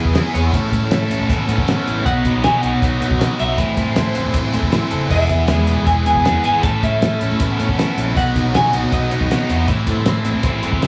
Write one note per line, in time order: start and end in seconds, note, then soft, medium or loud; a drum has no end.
0.00 0.15 B2 medium
0.00 0.34 E3 medium
0.00 0.13 B3 medium
0.00 0.57 B3 medium
0.00 0.13 E4 medium
0.00 0.14 E4 medium
0.00 0.15 G#4 medium
0.00 0.51 G#4 medium
0.00 0.51 B4 medium
0.00 0.37 E5 loud
0.00 2.02 E5 medium
0.00 0.50 B5 medium
0.05 0.13 E2 medium
0.05 kick medium
0.13 0.22 E3 medium
0.13 0.52 B3 medium
0.13 0.53 E4 medium
0.13 0.52 E4 medium
0.13 0.53 G#4 medium
0.13 snare loud
0.13 closed hi-hat medium
0.34 0.50 E2 loud
0.34 0.53 G#4 medium
0.34 0.70 C#5 medium
0.34 snare soft
0.34 closed hi-hat medium
0.51 0.69 A1 loud
0.51 1.49 A2 medium
0.51 0.90 C#4 medium
0.51 0.91 E4 loud
0.51 2.04 A4 medium
0.51 0.92 A4 loud
0.51 3.55 C#5 medium
0.51 3.55 B5 medium
0.51 kick loud
0.51 closed hi-hat loud
0.72 0.80 A2 loud
0.72 0.92 A3 medium
0.72 kick medium
0.72 closed hi-hat medium
0.82 0.90 A1 medium
0.91 1.07 A2 medium
0.91 1.87 A3 medium
0.91 1.27 C#4 medium
0.91 1.10 E4 medium
0.91 1.08 A4 medium
0.91 snare loud
0.91 closed hi-hat loud
1.09 1.18 A1 medium
1.09 1.48 C#4 medium
1.09 1.28 E4 medium
1.09 1.29 A4 medium
1.09 closed hi-hat medium
1.20 1.28 A2 medium
1.27 1.46 A1 loud
1.27 1.66 B3 medium
1.27 1.65 C#4 medium
1.27 1.49 E4 loud
1.27 1.46 A4 loud
1.27 kick loud
1.27 closed hi-hat loud
1.47 1.56 A2 medium
1.47 2.06 C#4 medium
1.47 1.66 E4 medium
1.47 1.68 A4 medium
1.47 closed hi-hat medium
1.58 1.66 A1 medium
1.58 kick medium
1.66 1.76 A2 medium
1.66 2.05 B3 medium
1.66 2.04 C#4 medium
1.66 2.04 E4 medium
1.66 2.05 A4 medium
1.66 snare loud
1.66 closed hi-hat medium
1.87 2.03 A1 medium
1.87 2.06 E4 medium
1.87 closed hi-hat medium
2.04 2.22 B1 loud
2.04 2.42 F#3 medium
2.04 2.43 B3 loud
2.04 2.43 B3 medium
2.04 2.45 D#4 loud
2.04 3.56 F#4 medium
2.04 3.56 D#5 medium
2.04 2.41 F#5 loud
2.04 kick loud
2.04 closed hi-hat medium
2.25 2.33 B2 loud
2.25 2.62 D#4 medium
2.25 kick medium
2.25 closed hi-hat medium
2.36 2.43 B1 medium
2.43 2.60 B2 loud
2.43 2.80 F#3 medium
2.43 2.63 B3 medium
2.43 3.40 B3 medium
2.43 2.60 D#4 medium
2.43 2.62 G#5 loud
2.43 snare loud
2.43 closed hi-hat medium
2.61 2.71 B1 medium
2.61 2.81 B3 medium
2.61 2.83 D#4 medium
2.61 2.99 D#4 medium
2.61 3.40 F#5 loud
2.61 closed hi-hat medium
2.74 2.81 B2 medium
2.81 2.98 B1 medium
2.81 3.18 F#3 medium
2.81 3.02 B3 loud
2.81 2.99 D#4 medium
2.81 3.19 F#4 medium
2.81 kick loud
2.81 closed hi-hat medium
3.01 3.09 B2 medium
3.01 3.20 B3 medium
3.01 3.21 D#4 medium
3.01 3.58 D#4 medium
3.01 closed hi-hat medium
3.11 3.19 B1 medium
3.11 kick medium
3.19 3.28 B2 medium
3.19 3.56 F#3 medium
3.19 3.58 B3 medium
3.19 3.58 D#4 medium
3.19 3.58 F#4 medium
3.19 snare loud
3.19 closed hi-hat medium
3.39 3.56 B1 medium
3.39 3.58 C#5 medium
3.39 3.75 E5 medium
3.39 snare soft
3.39 closed hi-hat medium
3.57 3.74 A1 loud
3.57 4.53 A2 medium
3.57 3.95 E3 loud
3.57 3.96 C4 medium
3.57 3.99 E4 loud
3.57 5.09 A4 medium
3.57 5.09 C5 medium
3.57 6.60 E5 medium
3.57 5.09 C6 medium
3.57 kick loud
3.57 closed hi-hat medium
3.77 3.85 A2 loud
3.77 3.94 A3 medium
3.77 kick medium
3.77 closed hi-hat medium
3.87 3.95 A1 medium
3.95 4.13 A2 medium
3.95 4.33 E3 medium
3.95 4.91 A3 medium
3.95 4.17 C4 medium
3.95 snare loud
3.95 closed hi-hat loud
3.99 4.15 E4 medium
4.15 4.24 A1 medium
4.15 4.51 C4 medium
4.15 4.34 C4 medium
4.15 4.36 E4 medium
4.15 closed hi-hat medium
4.25 4.33 A2 medium
4.33 4.51 A1 medium
4.33 4.72 E3 medium
4.33 4.55 C4 medium
4.33 4.71 E4 medium
4.33 4.52 E4 loud
4.33 kick loud
4.33 closed hi-hat loud
4.53 4.62 A2 medium
4.53 5.10 C4 medium
4.53 4.72 C4 medium
4.53 4.75 E4 medium
4.53 closed hi-hat medium
4.63 4.71 A1 medium
4.63 kick medium
4.71 4.80 A2 medium
4.71 8.15 E3 medium
4.71 5.08 C4 medium
4.71 5.86 E4 medium
4.71 5.11 E4 medium
4.71 snare loud
4.71 closed hi-hat loud
4.90 5.08 F#1 medium
4.90 5.10 A4 medium
4.90 closed hi-hat medium
5.09 5.27 E1 medium
5.09 6.06 E2 medium
5.09 5.47 B3 loud
5.09 5.49 E4 loud
5.09 6.62 G#4 medium
5.09 5.51 G#4 medium
5.09 6.62 B4 medium
5.09 5.87 E5 loud
5.09 9.65 B5 medium
5.09 kick loud
5.09 crash medium
5.29 5.38 E2 loud
5.29 6.25 E3 medium
5.29 kick medium
5.29 closed hi-hat medium
5.40 5.48 E1 medium
5.48 5.65 E2 medium
5.48 6.44 G#3 medium
5.48 5.86 B3 medium
5.48 5.70 E4 medium
5.48 snare loud
5.48 closed hi-hat medium
5.52 5.67 G#4 medium
5.67 5.76 E1 medium
5.67 6.05 B3 medium
5.67 5.87 E4 medium
5.67 5.88 G#4 medium
5.67 closed hi-hat medium
5.77 5.85 E2 medium
5.86 6.03 E1 medium
5.86 6.25 B3 medium
5.86 6.23 E4 medium
5.86 6.08 E4 medium
5.86 6.05 G#4 loud
5.86 5.92 G#5 loud
5.86 kick loud
5.86 closed hi-hat medium
6.05 6.14 E2 medium
6.05 6.66 B3 medium
6.05 6.27 G#4 medium
6.05 6.44 G#5 loud
6.05 closed hi-hat medium
6.09 6.26 E4 medium
6.16 6.24 E1 medium
6.16 kick medium
6.25 6.34 E2 medium
6.25 6.63 B3 medium
6.25 6.63 E4 medium
6.25 6.64 G#4 medium
6.25 snare loud
6.25 closed hi-hat medium
6.44 6.61 G#1 medium
6.44 6.63 G#4 medium
6.44 6.63 G#5 loud
6.44 closed hi-hat medium
6.63 6.80 A1 loud
6.63 7.59 A2 medium
6.63 7.01 C#4 loud
6.63 7.01 E4 medium
6.63 8.15 A4 medium
6.63 7.02 A4 loud
6.63 9.66 C#5 medium
6.63 8.15 E5 medium
6.63 6.83 A5 loud
6.63 kick loud
6.63 closed hi-hat medium
6.83 6.91 A2 loud
6.83 7.01 A3 medium
6.83 7.94 E5 loud
6.83 kick medium
6.83 closed hi-hat medium
6.93 7.01 A1 medium
7.01 7.18 A2 medium
7.01 7.97 A3 medium
7.01 7.39 C#4 medium
7.01 7.22 E4 medium
7.01 7.19 A4 medium
7.01 snare loud
7.01 closed hi-hat medium
7.20 7.29 A1 medium
7.20 7.59 C#4 medium
7.20 7.39 E4 medium
7.20 7.41 A4 medium
7.20 closed hi-hat medium
7.31 7.39 A2 medium
7.39 7.56 A1 loud
7.39 7.77 B3 medium
7.39 7.75 C#4 medium
7.39 7.60 E4 loud
7.39 7.56 A4 loud
7.39 kick loud
7.39 closed hi-hat loud
7.57 7.68 A2 medium
7.57 8.17 C#4 medium
7.57 7.77 E4 medium
7.57 7.78 A4 medium
7.57 closed hi-hat medium
7.69 7.77 A1 medium
7.69 kick medium
7.76 7.87 A2 medium
7.76 8.16 B3 medium
7.76 8.14 C#4 medium
7.76 8.15 E4 medium
7.76 8.16 A4 medium
7.76 snare loud
7.76 closed hi-hat loud
7.97 8.13 A#1 medium
7.97 8.17 E4 medium
7.97 snare soft
7.97 closed hi-hat medium
8.15 8.32 B1 loud
8.15 8.52 F#3 medium
8.15 8.54 B3 loud
8.15 8.53 B3 medium
8.15 8.56 D#4 medium
8.15 9.66 F#4 medium
8.15 9.67 D#5 medium
8.15 8.56 F#5 medium
8.15 kick loud
8.15 closed hi-hat medium
8.35 8.43 B2 loud
8.35 8.72 D#4 medium
8.35 kick medium
8.35 closed hi-hat medium
8.45 8.53 B1 medium
8.54 8.71 B2 medium
8.54 8.91 F#3 medium
8.54 9.49 B3 medium
8.54 8.74 B3 medium
8.54 8.71 D#4 medium
8.54 8.74 G#5 medium
8.54 snare loud
8.54 closed hi-hat medium
8.72 8.81 B1 medium
8.72 8.92 B3 medium
8.72 8.93 D#4 medium
8.72 9.09 D#4 medium
8.72 8.93 F#5 medium
8.72 closed hi-hat medium
8.84 8.91 B2 medium
8.92 9.08 B1 loud
8.92 9.29 F#3 medium
8.92 9.13 B3 loud
8.92 9.10 D#4 medium
8.92 9.29 F#4 medium
8.92 9.13 D#5 medium
8.92 kick loud
8.92 closed hi-hat medium
9.11 9.20 B2 medium
9.11 9.31 B3 medium
9.11 9.68 D#4 medium
9.11 9.32 D#4 medium
9.11 9.32 C#5 medium
9.11 closed hi-hat medium
9.21 9.29 B1 medium
9.21 kick medium
9.30 9.39 B2 loud
9.30 9.67 F#3 medium
9.30 9.68 B3 medium
9.30 9.69 D#4 medium
9.30 9.68 F#4 medium
9.30 9.52 D#5 medium
9.30 snare loud
9.30 closed hi-hat medium
9.49 9.65 E2 medium
9.49 9.68 C#5 medium
9.49 10.87 E5 medium
9.49 snare soft
9.49 closed hi-hat medium
9.66 9.85 A1 loud
9.66 10.64 A2 medium
9.66 10.05 E3 loud
9.66 10.07 C4 loud
9.66 10.87 A4 medium
9.66 10.87 C5 medium
9.66 10.87 E5 medium
9.66 10.87 C6 medium
9.66 kick loud
9.66 closed hi-hat medium
9.71 10.09 E4 loud
9.87 9.96 A2 loud
9.87 10.04 A3 medium
9.87 kick medium
9.87 closed hi-hat medium
9.97 10.05 A1 medium
10.06 10.22 A2 medium
10.06 10.43 E3 medium
10.06 10.87 A3 medium
10.06 10.28 C4 medium
10.06 snare loud
10.06 closed hi-hat loud
10.10 10.24 E4 medium
10.24 10.33 A1 medium
10.24 10.62 C4 medium
10.24 10.47 E4 medium
10.24 closed hi-hat medium
10.29 10.45 C4 medium
10.34 10.43 A2 medium
10.43 10.60 A1 medium
10.43 10.80 E3 medium
10.43 10.66 C4 medium
10.43 10.82 E4 medium
10.43 kick loud
10.43 closed hi-hat loud
10.48 10.62 E4 loud
10.63 10.81 G#1 medium
10.63 10.87 C4 medium
10.63 10.82 C4 medium
10.63 10.83 E4 medium
10.63 closed hi-hat medium
10.73 kick medium
10.81 10.87 F#1 medium
10.81 10.87 E3 medium
10.81 10.87 C4 medium
10.81 10.87 E4 medium
10.81 snare loud
10.81 closed hi-hat medium